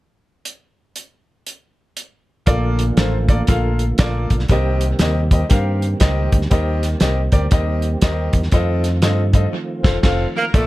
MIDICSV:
0, 0, Header, 1, 7, 480
1, 0, Start_track
1, 0, Key_signature, -2, "major"
1, 0, Tempo, 504202
1, 431, Time_signature, 4, 2, 24, 8
1, 10154, End_track
2, 0, Start_track
2, 0, Title_t, "Grand piano"
2, 0, Program_c, 0, 0
2, 2343, Note_on_c, 0, 58, 94
2, 2350, Note_on_c, 0, 65, 82
2, 2352, Note_on_c, 0, 46, 60
2, 2354, Note_on_c, 0, 69, 77
2, 2358, Note_on_c, 0, 74, 100
2, 2676, Note_off_c, 0, 58, 0
2, 2679, Note_off_c, 0, 65, 0
2, 2681, Note_off_c, 0, 69, 0
2, 2683, Note_off_c, 0, 74, 0
2, 2829, Note_on_c, 0, 58, 74
2, 2833, Note_on_c, 0, 65, 68
2, 2836, Note_on_c, 0, 69, 63
2, 2843, Note_on_c, 0, 72, 79
2, 3004, Note_off_c, 0, 58, 0
2, 3007, Note_off_c, 0, 65, 0
2, 3008, Note_off_c, 0, 69, 0
2, 3012, Note_off_c, 0, 72, 0
2, 3095, Note_off_c, 0, 46, 0
2, 3128, Note_on_c, 0, 58, 72
2, 3132, Note_on_c, 0, 65, 60
2, 3137, Note_on_c, 0, 69, 66
2, 3137, Note_on_c, 0, 74, 76
2, 3236, Note_off_c, 0, 58, 0
2, 3238, Note_off_c, 0, 65, 0
2, 3240, Note_off_c, 0, 69, 0
2, 3241, Note_off_c, 0, 74, 0
2, 3317, Note_on_c, 0, 58, 78
2, 3319, Note_on_c, 0, 65, 71
2, 3328, Note_on_c, 0, 69, 68
2, 3329, Note_on_c, 0, 77, 84
2, 3643, Note_off_c, 0, 58, 0
2, 3644, Note_off_c, 0, 65, 0
2, 3649, Note_off_c, 0, 69, 0
2, 3649, Note_off_c, 0, 77, 0
2, 3798, Note_on_c, 0, 58, 83
2, 3798, Note_on_c, 0, 65, 70
2, 3807, Note_on_c, 0, 69, 71
2, 3809, Note_on_c, 0, 74, 90
2, 4124, Note_off_c, 0, 58, 0
2, 4124, Note_off_c, 0, 65, 0
2, 4128, Note_off_c, 0, 69, 0
2, 4129, Note_off_c, 0, 74, 0
2, 4287, Note_on_c, 0, 60, 96
2, 4291, Note_on_c, 0, 48, 67
2, 4293, Note_on_c, 0, 67, 84
2, 4294, Note_on_c, 0, 70, 82
2, 4302, Note_on_c, 0, 75, 96
2, 4609, Note_off_c, 0, 60, 0
2, 4612, Note_off_c, 0, 67, 0
2, 4612, Note_off_c, 0, 70, 0
2, 4616, Note_off_c, 0, 75, 0
2, 4759, Note_on_c, 0, 60, 75
2, 4763, Note_on_c, 0, 67, 72
2, 4767, Note_on_c, 0, 70, 69
2, 4774, Note_on_c, 0, 75, 87
2, 4930, Note_off_c, 0, 60, 0
2, 4933, Note_off_c, 0, 67, 0
2, 4934, Note_off_c, 0, 70, 0
2, 4938, Note_off_c, 0, 75, 0
2, 5025, Note_off_c, 0, 48, 0
2, 5059, Note_on_c, 0, 60, 68
2, 5061, Note_on_c, 0, 67, 63
2, 5064, Note_on_c, 0, 70, 62
2, 5072, Note_on_c, 0, 75, 78
2, 5163, Note_off_c, 0, 60, 0
2, 5163, Note_off_c, 0, 67, 0
2, 5165, Note_off_c, 0, 70, 0
2, 5169, Note_off_c, 0, 75, 0
2, 5229, Note_on_c, 0, 60, 78
2, 5229, Note_on_c, 0, 67, 67
2, 5237, Note_on_c, 0, 70, 68
2, 5239, Note_on_c, 0, 77, 86
2, 5560, Note_off_c, 0, 60, 0
2, 5560, Note_off_c, 0, 67, 0
2, 5564, Note_off_c, 0, 70, 0
2, 5565, Note_off_c, 0, 77, 0
2, 5712, Note_on_c, 0, 67, 71
2, 5713, Note_on_c, 0, 60, 85
2, 5720, Note_on_c, 0, 70, 75
2, 5723, Note_on_c, 0, 75, 91
2, 6041, Note_off_c, 0, 67, 0
2, 6042, Note_off_c, 0, 60, 0
2, 6045, Note_off_c, 0, 70, 0
2, 6047, Note_off_c, 0, 75, 0
2, 6192, Note_on_c, 0, 60, 93
2, 6196, Note_on_c, 0, 67, 82
2, 6201, Note_on_c, 0, 70, 90
2, 6202, Note_on_c, 0, 51, 64
2, 6206, Note_on_c, 0, 75, 97
2, 6521, Note_off_c, 0, 60, 0
2, 6523, Note_off_c, 0, 67, 0
2, 6525, Note_off_c, 0, 70, 0
2, 6528, Note_off_c, 0, 75, 0
2, 6667, Note_on_c, 0, 60, 78
2, 6673, Note_on_c, 0, 67, 71
2, 6676, Note_on_c, 0, 70, 65
2, 6679, Note_on_c, 0, 75, 81
2, 6844, Note_off_c, 0, 60, 0
2, 6847, Note_off_c, 0, 67, 0
2, 6849, Note_off_c, 0, 70, 0
2, 6850, Note_off_c, 0, 75, 0
2, 6940, Note_off_c, 0, 51, 0
2, 6970, Note_on_c, 0, 60, 71
2, 6975, Note_on_c, 0, 67, 61
2, 6976, Note_on_c, 0, 70, 70
2, 6979, Note_on_c, 0, 74, 78
2, 7077, Note_off_c, 0, 60, 0
2, 7080, Note_off_c, 0, 67, 0
2, 7081, Note_off_c, 0, 70, 0
2, 7082, Note_off_c, 0, 74, 0
2, 7151, Note_on_c, 0, 60, 77
2, 7157, Note_on_c, 0, 67, 69
2, 7164, Note_on_c, 0, 70, 69
2, 7167, Note_on_c, 0, 75, 90
2, 7480, Note_off_c, 0, 60, 0
2, 7482, Note_off_c, 0, 67, 0
2, 7486, Note_off_c, 0, 70, 0
2, 7487, Note_off_c, 0, 75, 0
2, 7634, Note_on_c, 0, 60, 80
2, 7639, Note_on_c, 0, 67, 79
2, 7641, Note_on_c, 0, 70, 80
2, 7644, Note_on_c, 0, 75, 89
2, 7960, Note_off_c, 0, 60, 0
2, 7963, Note_off_c, 0, 67, 0
2, 7964, Note_off_c, 0, 70, 0
2, 7965, Note_off_c, 0, 75, 0
2, 8119, Note_on_c, 0, 60, 91
2, 8122, Note_on_c, 0, 65, 85
2, 8126, Note_on_c, 0, 69, 83
2, 8130, Note_on_c, 0, 75, 96
2, 8442, Note_off_c, 0, 60, 0
2, 8444, Note_off_c, 0, 65, 0
2, 8446, Note_off_c, 0, 69, 0
2, 8448, Note_off_c, 0, 75, 0
2, 8591, Note_on_c, 0, 60, 73
2, 8596, Note_on_c, 0, 65, 68
2, 8599, Note_on_c, 0, 75, 81
2, 8601, Note_on_c, 0, 69, 64
2, 8764, Note_off_c, 0, 60, 0
2, 8766, Note_off_c, 0, 65, 0
2, 8768, Note_off_c, 0, 75, 0
2, 8769, Note_off_c, 0, 69, 0
2, 8883, Note_on_c, 0, 60, 71
2, 8890, Note_on_c, 0, 65, 64
2, 8895, Note_on_c, 0, 69, 64
2, 8899, Note_on_c, 0, 75, 77
2, 8991, Note_off_c, 0, 60, 0
2, 8995, Note_off_c, 0, 65, 0
2, 8998, Note_off_c, 0, 69, 0
2, 9000, Note_off_c, 0, 75, 0
2, 9361, Note_on_c, 0, 60, 93
2, 9367, Note_on_c, 0, 65, 92
2, 9371, Note_on_c, 0, 69, 84
2, 9377, Note_on_c, 0, 72, 92
2, 9488, Note_off_c, 0, 60, 0
2, 9492, Note_off_c, 0, 65, 0
2, 9494, Note_off_c, 0, 69, 0
2, 9497, Note_off_c, 0, 72, 0
2, 9545, Note_on_c, 0, 60, 97
2, 9548, Note_on_c, 0, 65, 97
2, 9555, Note_on_c, 0, 69, 99
2, 9561, Note_on_c, 0, 77, 96
2, 9750, Note_off_c, 0, 60, 0
2, 9751, Note_off_c, 0, 65, 0
2, 9755, Note_off_c, 0, 69, 0
2, 9759, Note_off_c, 0, 77, 0
2, 10022, Note_on_c, 0, 58, 59
2, 10028, Note_on_c, 0, 46, 55
2, 10030, Note_on_c, 0, 65, 57
2, 10031, Note_on_c, 0, 69, 62
2, 10037, Note_on_c, 0, 74, 71
2, 10154, Note_off_c, 0, 46, 0
2, 10154, Note_off_c, 0, 58, 0
2, 10154, Note_off_c, 0, 65, 0
2, 10154, Note_off_c, 0, 69, 0
2, 10154, Note_off_c, 0, 74, 0
2, 10154, End_track
3, 0, Start_track
3, 0, Title_t, "Saxophone section"
3, 0, Program_c, 1, 65
3, 9852, Note_on_c, 1, 70, 97
3, 10019, Note_off_c, 1, 70, 0
3, 10033, Note_on_c, 1, 69, 96
3, 10045, Note_on_c, 1, 65, 73
3, 10049, Note_on_c, 1, 62, 72
3, 10154, Note_off_c, 1, 62, 0
3, 10154, Note_off_c, 1, 65, 0
3, 10154, Note_off_c, 1, 69, 0
3, 10154, End_track
4, 0, Start_track
4, 0, Title_t, "Tenor saxophone"
4, 0, Program_c, 2, 66
4, 9875, Note_on_c, 2, 58, 95
4, 9950, Note_off_c, 2, 58, 0
4, 10035, Note_on_c, 2, 57, 98
4, 10154, Note_off_c, 2, 57, 0
4, 10154, End_track
5, 0, Start_track
5, 0, Title_t, "Tonewheel organ"
5, 0, Program_c, 3, 16
5, 2348, Note_on_c, 3, 57, 54
5, 2352, Note_on_c, 3, 50, 59
5, 2353, Note_on_c, 3, 58, 53
5, 2355, Note_on_c, 3, 53, 52
5, 2356, Note_on_c, 3, 65, 67
5, 4255, Note_off_c, 3, 57, 0
5, 4257, Note_off_c, 3, 50, 0
5, 4258, Note_off_c, 3, 53, 0
5, 4259, Note_off_c, 3, 65, 0
5, 4282, Note_on_c, 3, 51, 56
5, 4284, Note_on_c, 3, 55, 51
5, 4285, Note_on_c, 3, 67, 61
5, 4288, Note_on_c, 3, 60, 53
5, 6159, Note_off_c, 3, 58, 0
5, 6208, Note_on_c, 3, 58, 54
5, 8079, Note_off_c, 3, 51, 0
5, 8080, Note_off_c, 3, 55, 0
5, 8081, Note_off_c, 3, 67, 0
5, 8101, Note_off_c, 3, 58, 0
5, 8105, Note_on_c, 3, 51, 61
5, 8108, Note_on_c, 3, 53, 52
5, 8110, Note_on_c, 3, 65, 66
5, 8119, Note_on_c, 3, 57, 58
5, 9996, Note_off_c, 3, 60, 0
5, 10005, Note_off_c, 3, 51, 0
5, 10007, Note_off_c, 3, 53, 0
5, 10007, Note_off_c, 3, 65, 0
5, 10012, Note_off_c, 3, 57, 0
5, 10154, End_track
6, 0, Start_track
6, 0, Title_t, "Fingered electric bass"
6, 0, Program_c, 4, 33
6, 2355, Note_on_c, 4, 34, 89
6, 2764, Note_off_c, 4, 34, 0
6, 2829, Note_on_c, 4, 33, 77
6, 3240, Note_off_c, 4, 33, 0
6, 3318, Note_on_c, 4, 34, 92
6, 3726, Note_off_c, 4, 34, 0
6, 3797, Note_on_c, 4, 34, 81
6, 4051, Note_off_c, 4, 34, 0
6, 4099, Note_on_c, 4, 35, 84
6, 4252, Note_off_c, 4, 35, 0
6, 4280, Note_on_c, 4, 36, 93
6, 4688, Note_off_c, 4, 36, 0
6, 4759, Note_on_c, 4, 39, 81
6, 5167, Note_off_c, 4, 39, 0
6, 5245, Note_on_c, 4, 43, 99
6, 5650, Note_off_c, 4, 43, 0
6, 5720, Note_on_c, 4, 37, 77
6, 5973, Note_off_c, 4, 37, 0
6, 6023, Note_on_c, 4, 38, 79
6, 6174, Note_off_c, 4, 38, 0
6, 6201, Note_on_c, 4, 39, 90
6, 6608, Note_off_c, 4, 39, 0
6, 6680, Note_on_c, 4, 36, 82
6, 6932, Note_off_c, 4, 36, 0
6, 6973, Note_on_c, 4, 38, 76
6, 7129, Note_off_c, 4, 38, 0
6, 7157, Note_on_c, 4, 39, 95
6, 7564, Note_off_c, 4, 39, 0
6, 7638, Note_on_c, 4, 39, 77
6, 7890, Note_off_c, 4, 39, 0
6, 7937, Note_on_c, 4, 40, 79
6, 8090, Note_off_c, 4, 40, 0
6, 8116, Note_on_c, 4, 41, 98
6, 8599, Note_off_c, 4, 41, 0
6, 8599, Note_on_c, 4, 43, 82
6, 9004, Note_off_c, 4, 43, 0
6, 9369, Note_on_c, 4, 29, 92
6, 9492, Note_off_c, 4, 29, 0
6, 9554, Note_on_c, 4, 29, 87
6, 9755, Note_off_c, 4, 29, 0
6, 10038, Note_on_c, 4, 34, 80
6, 10154, Note_off_c, 4, 34, 0
6, 10154, End_track
7, 0, Start_track
7, 0, Title_t, "Drums"
7, 432, Note_on_c, 9, 42, 50
7, 527, Note_off_c, 9, 42, 0
7, 911, Note_on_c, 9, 42, 51
7, 1006, Note_off_c, 9, 42, 0
7, 1395, Note_on_c, 9, 42, 53
7, 1490, Note_off_c, 9, 42, 0
7, 1872, Note_on_c, 9, 42, 56
7, 1967, Note_off_c, 9, 42, 0
7, 2347, Note_on_c, 9, 42, 66
7, 2352, Note_on_c, 9, 36, 92
7, 2443, Note_off_c, 9, 42, 0
7, 2448, Note_off_c, 9, 36, 0
7, 2654, Note_on_c, 9, 42, 73
7, 2749, Note_off_c, 9, 42, 0
7, 2827, Note_on_c, 9, 42, 83
7, 2832, Note_on_c, 9, 38, 105
7, 2922, Note_off_c, 9, 42, 0
7, 2927, Note_off_c, 9, 38, 0
7, 3128, Note_on_c, 9, 36, 74
7, 3128, Note_on_c, 9, 42, 71
7, 3223, Note_off_c, 9, 36, 0
7, 3223, Note_off_c, 9, 42, 0
7, 3306, Note_on_c, 9, 42, 82
7, 3317, Note_on_c, 9, 36, 93
7, 3401, Note_off_c, 9, 42, 0
7, 3412, Note_off_c, 9, 36, 0
7, 3610, Note_on_c, 9, 42, 58
7, 3705, Note_off_c, 9, 42, 0
7, 3788, Note_on_c, 9, 42, 94
7, 3796, Note_on_c, 9, 38, 112
7, 3800, Note_on_c, 9, 36, 97
7, 3883, Note_off_c, 9, 42, 0
7, 3891, Note_off_c, 9, 38, 0
7, 3895, Note_off_c, 9, 36, 0
7, 4096, Note_on_c, 9, 42, 70
7, 4099, Note_on_c, 9, 36, 76
7, 4183, Note_on_c, 9, 38, 34
7, 4191, Note_off_c, 9, 42, 0
7, 4194, Note_off_c, 9, 36, 0
7, 4270, Note_on_c, 9, 42, 73
7, 4279, Note_off_c, 9, 38, 0
7, 4279, Note_on_c, 9, 36, 93
7, 4365, Note_off_c, 9, 42, 0
7, 4374, Note_off_c, 9, 36, 0
7, 4577, Note_on_c, 9, 42, 68
7, 4673, Note_off_c, 9, 42, 0
7, 4749, Note_on_c, 9, 42, 89
7, 4754, Note_on_c, 9, 38, 101
7, 4844, Note_off_c, 9, 42, 0
7, 4849, Note_off_c, 9, 38, 0
7, 5056, Note_on_c, 9, 36, 77
7, 5058, Note_on_c, 9, 42, 66
7, 5151, Note_off_c, 9, 36, 0
7, 5153, Note_off_c, 9, 42, 0
7, 5233, Note_on_c, 9, 42, 82
7, 5244, Note_on_c, 9, 36, 100
7, 5329, Note_off_c, 9, 42, 0
7, 5339, Note_off_c, 9, 36, 0
7, 5544, Note_on_c, 9, 42, 62
7, 5639, Note_off_c, 9, 42, 0
7, 5712, Note_on_c, 9, 42, 101
7, 5720, Note_on_c, 9, 38, 105
7, 5723, Note_on_c, 9, 36, 86
7, 5808, Note_off_c, 9, 42, 0
7, 5815, Note_off_c, 9, 38, 0
7, 5818, Note_off_c, 9, 36, 0
7, 6020, Note_on_c, 9, 42, 68
7, 6021, Note_on_c, 9, 36, 80
7, 6109, Note_on_c, 9, 38, 34
7, 6115, Note_off_c, 9, 42, 0
7, 6117, Note_off_c, 9, 36, 0
7, 6197, Note_on_c, 9, 42, 70
7, 6202, Note_on_c, 9, 36, 98
7, 6204, Note_off_c, 9, 38, 0
7, 6292, Note_off_c, 9, 42, 0
7, 6297, Note_off_c, 9, 36, 0
7, 6499, Note_on_c, 9, 38, 32
7, 6502, Note_on_c, 9, 42, 70
7, 6594, Note_off_c, 9, 38, 0
7, 6597, Note_off_c, 9, 42, 0
7, 6665, Note_on_c, 9, 42, 86
7, 6670, Note_on_c, 9, 38, 101
7, 6760, Note_off_c, 9, 42, 0
7, 6765, Note_off_c, 9, 38, 0
7, 6968, Note_on_c, 9, 42, 72
7, 6973, Note_on_c, 9, 36, 74
7, 7063, Note_off_c, 9, 42, 0
7, 7068, Note_off_c, 9, 36, 0
7, 7148, Note_on_c, 9, 42, 84
7, 7157, Note_on_c, 9, 36, 104
7, 7243, Note_off_c, 9, 42, 0
7, 7253, Note_off_c, 9, 36, 0
7, 7447, Note_on_c, 9, 42, 59
7, 7542, Note_off_c, 9, 42, 0
7, 7630, Note_on_c, 9, 42, 100
7, 7638, Note_on_c, 9, 38, 113
7, 7639, Note_on_c, 9, 36, 89
7, 7725, Note_off_c, 9, 42, 0
7, 7733, Note_off_c, 9, 38, 0
7, 7734, Note_off_c, 9, 36, 0
7, 7929, Note_on_c, 9, 42, 68
7, 7934, Note_on_c, 9, 36, 81
7, 8024, Note_on_c, 9, 38, 35
7, 8025, Note_off_c, 9, 42, 0
7, 8029, Note_off_c, 9, 36, 0
7, 8107, Note_on_c, 9, 42, 69
7, 8114, Note_on_c, 9, 36, 99
7, 8119, Note_off_c, 9, 38, 0
7, 8202, Note_off_c, 9, 42, 0
7, 8210, Note_off_c, 9, 36, 0
7, 8412, Note_on_c, 9, 38, 29
7, 8415, Note_on_c, 9, 42, 67
7, 8507, Note_off_c, 9, 38, 0
7, 8510, Note_off_c, 9, 42, 0
7, 8586, Note_on_c, 9, 42, 89
7, 8591, Note_on_c, 9, 38, 99
7, 8682, Note_off_c, 9, 42, 0
7, 8687, Note_off_c, 9, 38, 0
7, 8886, Note_on_c, 9, 42, 72
7, 8887, Note_on_c, 9, 36, 76
7, 8981, Note_off_c, 9, 42, 0
7, 8983, Note_off_c, 9, 36, 0
7, 9372, Note_on_c, 9, 36, 99
7, 9375, Note_on_c, 9, 38, 91
7, 9375, Note_on_c, 9, 49, 76
7, 9467, Note_off_c, 9, 36, 0
7, 9470, Note_off_c, 9, 38, 0
7, 9470, Note_off_c, 9, 49, 0
7, 9551, Note_on_c, 9, 38, 101
7, 9551, Note_on_c, 9, 49, 76
7, 9553, Note_on_c, 9, 36, 100
7, 9646, Note_off_c, 9, 38, 0
7, 9646, Note_off_c, 9, 49, 0
7, 9649, Note_off_c, 9, 36, 0
7, 10034, Note_on_c, 9, 36, 94
7, 10036, Note_on_c, 9, 42, 68
7, 10129, Note_off_c, 9, 36, 0
7, 10131, Note_off_c, 9, 42, 0
7, 10154, End_track
0, 0, End_of_file